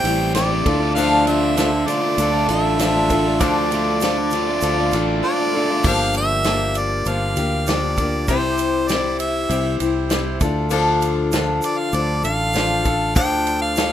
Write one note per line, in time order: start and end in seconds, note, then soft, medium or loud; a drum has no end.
0.00 0.61 A1 medium
0.00 0.64 E3 medium
0.00 0.64 G4 medium
0.00 0.64 C5 medium
0.00 0.32 G5 loud
0.04 0.34 E3 medium
0.04 0.35 G3 medium
0.04 0.36 C4 medium
0.04 0.35 C4 soft
0.04 0.36 E4 soft
0.04 0.35 G4 soft
0.04 0.36 G4 medium
0.04 ride medium
0.04 shaker medium
0.34 0.64 C3 medium
0.34 0.64 E3 medium
0.34 0.66 G3 medium
0.34 0.52 G3 medium
0.34 0.66 C4 medium
0.34 0.50 C4 medium
0.34 0.66 E4 medium
0.34 0.66 G4 medium
0.34 0.48 G4 loud
0.34 0.92 D5 medium
0.34 snare loud
0.34 ride loud
0.34 shaker medium
0.50 0.65 G3 medium
0.50 0.65 C4 medium
0.50 0.64 G4 medium
0.64 1.84 D2 loud
0.64 0.95 D3 medium
0.64 0.84 A3 medium
0.64 0.82 D4 loud
0.64 3.07 F4 medium
0.64 0.97 F4 medium
0.64 0.81 F4 loud
0.64 3.07 A4 medium
0.64 0.96 A4 medium
0.64 3.07 D5 medium
0.64 kick loud
0.64 ride medium
0.68 0.97 D4 soft
0.81 0.96 A3 medium
0.81 0.98 D4 medium
0.81 0.98 F4 medium
0.95 1.26 D3 medium
0.95 3.40 D3 medium
0.95 1.56 F3 medium
0.95 1.27 A3 loud
0.95 1.56 D4 medium
0.95 1.28 D4 medium
0.95 1.58 F4 loud
0.95 1.30 F4 loud
0.95 1.57 A4 medium
0.95 1.24 F5 loud
0.95 crash medium
0.95 shaker medium
1.26 1.56 D3 medium
1.26 1.57 A3 medium
1.26 1.58 D4 medium
1.26 1.60 F4 medium
1.26 1.89 E5 loud
1.26 ride medium
1.26 shaker medium
1.56 1.86 D3 loud
1.56 2.18 F3 medium
1.56 1.73 A3 medium
1.56 2.19 D4 medium
1.56 1.72 D4 loud
1.56 2.19 F4 medium
1.56 1.72 F4 loud
1.56 2.19 A4 medium
1.56 snare loud
1.56 ride medium
1.56 shaker loud
1.72 muted overdriven electric guitar stroke medium
1.86 2.33 D3 medium
1.86 2.03 A3 medium
1.86 2.03 D4 medium
1.86 2.01 F4 medium
1.86 2.50 D5 medium
1.86 ride medium
1.86 shaker medium
2.01 2.35 A3 medium
2.01 2.34 D4 medium
2.01 2.32 F4 medium
2.18 2.46 D2 loud
2.18 2.49 F3 medium
2.18 2.49 D4 medium
2.18 2.48 F4 medium
2.18 2.47 A4 medium
2.18 ride medium
2.18 shaker loud
2.32 2.47 A3 medium
2.32 2.50 D4 medium
2.32 2.50 F4 medium
2.48 3.41 A1 loud
2.48 2.77 D3 medium
2.48 2.79 A3 medium
2.48 2.80 D4 soft
2.48 2.81 D4 medium
2.48 2.79 F4 soft
2.48 2.82 F4 medium
2.48 2.79 A4 medium
2.48 3.43 E5 loud
2.48 ride medium
2.48 shaker medium
2.79 3.09 D3 medium
2.79 3.10 F3 medium
2.79 2.96 A3 loud
2.79 3.10 D4 medium
2.79 2.96 D4 loud
2.79 3.11 F4 medium
2.79 2.94 F4 loud
2.79 3.09 A4 medium
2.79 snare loud
2.79 ride medium
2.79 shaker loud
2.94 3.11 A3 medium
2.94 3.12 D4 medium
2.94 3.13 F4 medium
3.09 3.39 D3 medium
3.09 3.27 A3 medium
3.09 3.40 D4 soft
3.09 3.26 D4 medium
3.09 5.82 F4 medium
3.09 3.40 F4 soft
3.09 5.82 A4 medium
3.09 3.41 A4 medium
3.09 5.82 D5 medium
3.09 kick medium
3.09 ride medium
3.09 shaker medium
3.14 3.24 F4 medium
3.25 3.40 A3 medium
3.25 3.41 D4 medium
3.25 3.42 F4 medium
3.40 4.58 D2 loud
3.40 4.01 D3 medium
3.40 3.70 D3 medium
3.40 4.00 F3 medium
3.40 3.71 A3 loud
3.40 4.01 D4 loud
3.40 3.72 D4 loud
3.40 4.02 F4 medium
3.40 3.73 F4 loud
3.40 4.02 A4 loud
3.40 5.07 D5 medium
3.40 kick loud
3.40 ride loud
3.40 shaker loud
3.71 4.01 D3 medium
3.71 4.02 A3 medium
3.71 4.03 D4 medium
3.71 4.03 F4 medium
3.71 ride medium
3.71 shaker medium
4.01 4.31 D3 medium
4.01 4.61 F3 medium
4.01 4.18 A3 medium
4.01 4.61 D4 medium
4.01 4.17 D4 loud
4.01 4.62 F4 medium
4.01 4.17 F4 medium
4.01 4.63 A4 medium
4.01 snare loud
4.01 ride medium
4.01 shaker loud
4.18 muted overdriven electric guitar stroke medium
4.31 4.78 D3 medium
4.31 4.49 A3 medium
4.31 ride medium
4.31 shaker medium
4.35 4.47 D4 medium
4.35 4.46 F4 medium
4.47 4.80 A3 medium
4.47 4.78 D4 medium
4.47 4.77 F4 medium
4.61 4.90 D2 loud
4.61 4.92 F3 medium
4.61 4.93 D4 medium
4.61 4.93 F4 medium
4.61 4.92 A4 medium
4.61 ride medium
4.61 shaker medium
4.78 4.93 A3 medium
4.78 4.94 D4 medium
4.78 4.95 F4 medium
4.91 5.21 A1 loud
4.91 5.22 D3 medium
4.91 5.23 A3 medium
4.91 5.23 F4 medium
4.91 5.24 A4 medium
4.91 ride medium
4.91 shaker medium
4.95 5.22 D4 medium
4.95 5.24 D4 medium
4.95 5.25 F4 medium
5.23 5.53 D3 loud
5.23 5.54 F3 medium
5.23 5.41 A3 medium
5.23 5.54 D4 medium
5.23 5.39 D4 medium
5.23 5.54 F4 medium
5.23 5.37 F4 loud
5.23 5.53 A4 medium
5.23 5.89 D5 loud
5.39 5.54 A3 medium
5.39 5.55 D4 medium
5.39 5.56 F4 medium
5.54 5.83 D3 medium
5.54 5.72 A3 medium
5.54 5.85 D4 medium
5.54 5.71 D4 medium
5.54 5.85 F4 medium
5.54 5.68 F4 medium
5.54 5.84 A4 medium
5.69 5.84 A3 medium
5.69 5.84 D4 medium
5.69 5.83 F4 medium
5.83 7.02 G1 loud
5.83 6.46 G2 medium
5.83 6.46 D3 medium
5.83 6.45 F3 medium
5.83 6.46 A#3 medium
5.83 6.46 D4 medium
5.83 8.26 F4 medium
5.83 8.26 G4 medium
5.83 6.48 G4 loud
5.83 8.26 A#4 medium
5.83 kick loud
5.83 crash loud
5.83 shaker medium
5.87 6.16 F5 loud
6.14 6.80 E5 loud
6.14 ride medium
6.14 shaker medium
6.44 7.05 F3 medium
6.44 7.05 A#3 medium
6.44 7.07 D4 medium
6.44 snare loud
6.44 ride medium
6.44 shaker medium
6.48 7.07 G4 medium
6.74 7.11 D5 medium
6.74 ride medium
6.74 shaker medium
7.05 7.34 G1 loud
7.05 7.37 F3 medium
7.05 7.37 A#3 medium
7.05 7.37 D4 medium
7.05 7.36 G4 medium
7.05 7.69 F5 loud
7.05 ride medium
7.05 shaker medium
7.36 8.28 D2 medium
7.36 7.67 F3 soft
7.36 7.67 A#3 soft
7.36 7.68 D4 soft
7.36 7.67 G4 medium
7.36 ride medium
7.36 shaker medium
7.67 7.98 F3 medium
7.67 7.98 A#3 medium
7.67 7.98 D4 medium
7.67 7.97 G4 medium
7.67 8.28 D5 medium
7.67 snare loud
7.67 ride medium
7.67 shaker medium
7.97 8.29 F3 soft
7.97 8.29 A#3 medium
7.97 8.29 D4 medium
7.97 8.28 G4 medium
7.97 kick medium
7.97 ride medium
7.97 shaker medium
8.27 9.46 C2 loud
8.27 8.90 C3 medium
8.27 8.88 G3 medium
8.27 8.89 C4 medium
8.27 10.39 E4 medium
8.27 8.90 E4 loud
8.27 10.39 G4 medium
8.27 8.90 G4 loud
8.27 10.39 C5 medium
8.27 8.90 C5 loud
8.27 kick loud
8.27 ride loud
8.27 shaker medium
8.58 ride medium
8.58 shaker medium
8.88 9.48 G3 medium
8.88 9.48 C4 medium
8.88 9.49 E4 medium
8.88 9.50 G4 medium
8.88 9.19 D5 medium
8.88 snare loud
8.88 ride loud
8.88 shaker medium
9.19 9.77 E5 medium
9.19 ride medium
9.19 shaker medium
9.49 9.78 C2 loud
9.49 9.80 G3 medium
9.49 9.80 C4 medium
9.49 9.80 E4 medium
9.49 9.79 G4 medium
9.49 ride loud
9.49 shaker medium
9.80 10.37 C2 medium
9.80 10.09 C4 soft
9.80 10.10 E4 medium
9.80 10.11 G4 medium
9.80 ride medium
9.80 shaker medium
10.09 10.41 G3 medium
10.09 10.41 C4 medium
10.09 10.41 E4 medium
10.09 10.40 G4 medium
10.09 snare loud
10.09 ride loud
10.09 shaker medium
10.41 11.59 D2 loud
10.41 10.70 D4 medium
10.41 12.83 F4 medium
10.41 10.71 F4 medium
10.41 10.71 A4 medium
10.41 12.83 A4 medium
10.41 12.83 D5 medium
10.41 kick loud
10.41 ride medium
10.41 shaker medium
10.70 13.14 D3 medium
10.70 11.32 F3 loud
10.70 11.33 D4 loud
10.70 11.33 F4 loud
10.70 11.33 A4 loud
10.70 crash loud
10.70 shaker medium
11.02 ride medium
11.02 shaker medium
11.32 11.93 F3 medium
11.32 11.94 D4 medium
11.32 11.95 F4 medium
11.32 11.95 A4 medium
11.32 snare loud
11.32 ride loud
11.32 shaker medium
11.62 11.80 D5 medium
11.62 ride medium
11.62 shaker medium
11.79 11.96 F5 medium
11.92 12.21 D2 loud
11.92 12.24 F3 medium
11.92 12.24 D4 medium
11.92 12.24 F4 medium
11.92 12.22 A4 medium
11.92 12.24 D5 medium
11.92 ride medium
11.92 shaker loud
12.23 13.16 A1 loud
12.23 12.54 D4 soft
12.23 12.54 F4 soft
12.23 12.54 A4 medium
12.23 13.12 F5 loud
12.23 ride medium
12.23 shaker medium
12.53 12.85 F3 medium
12.53 12.85 D4 medium
12.53 12.84 F4 medium
12.53 12.83 A4 medium
12.53 snare loud
12.53 ride medium
12.53 shaker medium
12.84 13.14 D4 soft
12.84 13.16 F4 soft
12.84 13.93 F4 medium
12.84 13.15 A4 medium
12.84 13.93 A4 medium
12.84 13.93 D5 medium
12.84 kick medium
12.84 ride medium
12.84 shaker medium
13.15 13.93 D2 loud
13.15 13.76 D3 loud
13.15 13.76 F3 loud
13.15 13.77 D4 medium
13.15 13.78 F4 medium
13.15 13.77 A4 medium
13.15 13.58 G5 loud
13.15 kick loud
13.15 ride loud
13.15 shaker medium
13.47 ride medium
13.47 shaker medium
13.62 13.93 F5 loud
13.76 13.93 F3 medium
13.76 13.93 D4 medium
13.76 13.93 F4 medium
13.76 13.93 A4 medium
13.76 snare loud
13.76 ride medium
13.76 shaker loud